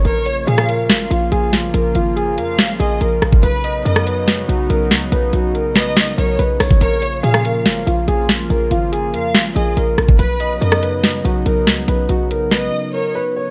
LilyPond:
<<
  \new Staff \with { instrumentName = "Violin section" } { \time 4/4 \key bes \phrygian \tempo 4 = 142 des''4 f''4 r2 | r4. f''4 ees''8 r4 | b'4 dis''4 r2 | r4. dis''4 cis''8 r4 |
des''4 f''4 r2 | r4. f''4 ees''8 r4 | b'4 dis''4 r2 | r4. dis''4 cis''8 r4 | }
  \new Staff \with { instrumentName = "Grand piano" } { \time 4/4 \key bes \phrygian bes'8 des''8 aes'8 bes'4 f'8 aes'8 r8 | bes'8 f'8 aes'8 bes'8 r8 aes'8 bes'4 | b'8 dis''8 bes'8 b'4 fis'8 bes'8 r8 | b'8 fis'8 bes'8 b'8 r8 bes'8 b'8 cis''8 |
bes'8 des''8 aes'8 bes'4 f'8 aes'8 r8 | bes'8 f'8 aes'8 bes'8 r8 aes'8 bes'4 | b'8 dis''8 bes'8 b'4 fis'8 bes'8 r8 | b'8 fis'8 bes'8 b'8 r8 bes'8 b'8 cis''8 | }
  \new Staff \with { instrumentName = "Analog synth pad" } { \time 4/4 \key bes \phrygian << { <f bes f'>1~ | <f bes f'>1 | <fis b dis'>1~ | <fis b dis'>1 |
<f bes f'>1~ | <f bes f'>1 | <fis b dis'>1~ | <fis b dis'>1 | } \\ { des1~ | des1~ | des1~ | des1~ |
des1~ | des1 | cis1~ | cis1 | } >> }
  \new Staff \with { instrumentName = "808-style bass" } { \clef bass \time 4/4 \key bes \phrygian bes,,4 bes,4 aes,,8 bes,,8 bes,,4 | bes,,8 aes,,4 f,8 aes,,8 bes,,8 bes,,8 bes,,8 | b,,4 fis,4. b,,8 b,,8 cis,8 | b,,8 b,,2 b,,8 b,,8 b,,8 |
bes,,4 bes,4 aes,,8 bes,,8 bes,,4 | bes,,8 aes,,4 f,8 aes,,8 bes,,8 bes,,8 bes,,8 | b,,4 fis,4. b,,8 b,,8 cis,8 | b,,8 b,,4. r2 | }
  \new DrumStaff \with { instrumentName = "Drums" } \drummode { \time 4/4 hh8 hh8 hh16 ss16 hh8 <hh sn>8 hh8 hh8 <hh sn>8 | hh8 hh8 hh8 hh8 <hh sn>8 hh8 hh8 <hh ss>16 bd16 | hh8 hh8 hh16 ss16 hh8 <hh sn>8 hh8 hh8 <hh sn>8 | hh8 hh8 hh8 <hh sn>8 <hh sn>8 hh8 hh8 <hho ss>16 bd16 |
hh8 hh8 hh16 ss16 hh8 <hh sn>8 hh8 hh8 <hh sn>8 | hh8 hh8 hh8 hh8 <hh sn>8 hh8 hh8 <hh ss>16 bd16 | hh8 hh8 hh16 ss16 hh8 <hh sn>8 hh8 hh8 <hh sn>8 | hh8 hh8 hh8 <hh sn>8 r4 r4 | }
>>